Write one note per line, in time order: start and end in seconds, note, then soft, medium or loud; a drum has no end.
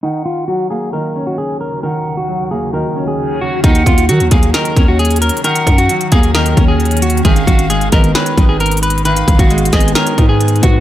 0.03 3.60 D#2 medium
0.03 3.60 C#3 medium
0.03 0.92 D#3 medium
0.03 0.21 D#4 medium
0.03 3.60 F#4 medium
0.03 0.67 F#5 loud
0.26 0.44 F4 medium
0.48 1.61 F#3 medium
0.48 0.66 F#4 medium
0.70 1.83 A#3 medium
0.70 0.89 G#4 medium
0.70 0.92 F5 medium
0.93 1.82 D#3 medium
0.93 1.25 A#4 medium
0.93 1.15 D#5 medium
1.16 2.29 C#4 medium
1.16 1.80 C#5 medium
1.27 1.36 F#4 medium
1.38 1.56 G#4 medium
1.61 1.79 A#4 medium
1.83 2.72 D#3 medium
1.83 2.15 A#4 medium
1.83 2.47 F#5 loud
2.17 2.49 F#4 medium
2.28 3.41 F#3 medium
2.51 3.64 A#3 medium
2.51 2.69 G#4 medium
2.51 2.72 F5 medium
2.73 3.62 D#3 loud
2.73 3.06 A#4 medium
2.73 2.95 D#5 medium
2.96 3.64 C#4 medium
2.96 3.60 C#5 medium
3.08 3.39 G#4 medium
3.41 3.60 F#4 medium
3.64 3.85 D#2 loud
3.64 7.21 D#3 medium
3.64 4.53 D#3 medium
3.64 7.21 C#4 medium
3.64 3.82 D#4 medium
3.64 7.21 F#4 medium
3.64 4.05 F#5 loud
3.64 kick loud
3.64 closed hi-hat medium
3.75 closed hi-hat medium
3.86 4.11 D#2 loud
3.86 4.05 F4 medium
3.86 kick medium
3.86 closed hi-hat medium
3.98 closed hi-hat medium
4.09 4.22 D#3 loud
4.09 5.22 F#3 medium
4.09 4.27 F#4 medium
4.09 closed hi-hat medium
4.20 4.31 D#2 loud
4.20 closed hi-hat soft
4.31 4.53 D#2 loud
4.31 5.45 A#3 medium
4.31 4.50 G#4 medium
4.31 4.53 F5 medium
4.31 kick loud
4.31 closed hi-hat medium
4.43 closed hi-hat medium
4.54 5.43 D#3 medium
4.54 4.86 A#4 medium
4.54 4.75 D#5 medium
4.54 snare loud
4.54 closed hi-hat medium
4.65 closed hi-hat medium
4.76 5.31 D#2 loud
4.76 5.90 C#4 medium
4.76 5.40 C#5 medium
4.76 kick loud
4.76 closed hi-hat medium
4.88 4.97 F#4 medium
4.99 5.18 G#4 medium
4.99 closed hi-hat soft
5.05 closed hi-hat soft
5.11 closed hi-hat medium
5.16 closed hi-hat medium
5.22 5.40 A#4 medium
5.22 closed hi-hat medium
5.29 closed hi-hat medium
5.37 closed hi-hat soft
5.44 6.33 D#3 loud
5.44 5.76 A#4 medium
5.44 6.08 F#5 loud
5.44 closed hi-hat medium
5.55 closed hi-hat medium
5.67 5.88 F#2 loud
5.67 kick medium
5.67 closed hi-hat medium
5.78 6.10 F#4 medium
5.78 closed hi-hat medium
5.89 7.02 F#3 medium
5.89 closed hi-hat medium
6.01 closed hi-hat soft
6.12 6.55 D#2 loud
6.12 7.25 A#3 medium
6.12 6.30 G#4 medium
6.12 6.33 F5 medium
6.12 kick loud
6.12 closed hi-hat medium
6.23 closed hi-hat medium
6.34 7.24 D#3 loud
6.34 6.67 A#4 medium
6.34 6.56 D#5 medium
6.34 snare loud
6.34 closed hi-hat medium
6.46 closed hi-hat medium
6.57 7.22 D#2 loud
6.57 7.25 C#4 medium
6.57 7.21 C#5 medium
6.57 kick loud
6.57 closed hi-hat medium
6.68 7.00 G#4 medium
6.80 closed hi-hat soft
6.85 closed hi-hat soft
6.91 closed hi-hat medium
6.97 closed hi-hat medium
7.02 7.21 F#4 medium
7.02 closed hi-hat medium
7.10 closed hi-hat medium
7.17 closed hi-hat soft
7.25 7.47 G#1 loud
7.25 8.13 D#3 loud
7.25 10.80 G#3 medium
7.25 10.80 B3 medium
7.25 10.80 D#4 medium
7.25 7.43 G#4 loud
7.25 7.88 F5 loud
7.25 kick loud
7.25 closed hi-hat medium
7.36 closed hi-hat medium
7.47 7.91 G#1 loud
7.47 7.66 F#4 medium
7.47 kick medium
7.47 closed hi-hat medium
7.59 closed hi-hat medium
7.70 8.83 G#3 medium
7.70 7.88 G#4 medium
7.70 closed hi-hat medium
7.81 closed hi-hat soft
7.92 8.14 G#1 loud
7.92 9.05 B3 medium
7.92 8.11 A#4 medium
7.92 8.14 D#5 medium
7.92 kick loud
7.92 closed hi-hat medium
8.04 closed hi-hat medium
8.15 9.04 D#3 loud
8.15 8.47 B4 medium
8.15 8.36 C#5 medium
8.15 snare loud
8.15 closed hi-hat medium
8.26 closed hi-hat medium
8.38 9.24 G#1 loud
8.38 9.51 D#4 medium
8.38 8.75 B4 medium
8.38 kick loud
8.38 closed hi-hat medium
8.49 8.58 G#4 medium
8.60 8.79 A#4 loud
8.60 closed hi-hat soft
8.66 closed hi-hat soft
8.71 closed hi-hat medium
8.77 closed hi-hat medium
8.83 9.01 B4 medium
8.83 closed hi-hat medium
8.90 closed hi-hat medium
8.98 closed hi-hat soft
9.05 9.94 D#3 medium
9.05 9.37 B4 loud
9.05 9.69 F5 loud
9.05 closed hi-hat medium
9.16 closed hi-hat medium
9.28 9.71 G#1 loud
9.28 kick medium
9.28 closed hi-hat medium
9.39 9.71 F#4 medium
9.39 kick loud
9.39 closed hi-hat medium
9.50 10.63 G#3 medium
9.50 closed hi-hat medium
9.58 closed hi-hat medium
9.65 closed hi-hat medium
9.73 9.95 G#1 loud
9.73 10.80 B3 medium
9.73 9.91 G#4 medium
9.73 9.94 D#5 medium
9.73 kick loud
9.73 snare loud
9.73 closed hi-hat medium
9.73 open hi-hat medium
9.80 closed hi-hat medium
9.88 closed hi-hat medium
9.95 10.80 D#3 medium
9.95 10.27 A#4 medium
9.95 10.17 C#5 medium
9.95 snare loud
9.95 closed hi-hat medium
10.07 closed hi-hat medium
10.18 10.61 G#2 loud
10.18 10.80 D#4 medium
10.18 10.80 B4 medium
10.18 kick loud
10.18 closed hi-hat medium
10.29 10.61 G#4 medium
10.41 closed hi-hat medium
10.48 closed hi-hat medium
10.56 closed hi-hat soft
10.63 10.80 G#2 loud
10.63 10.80 F#4 medium
10.63 kick medium
10.63 closed hi-hat medium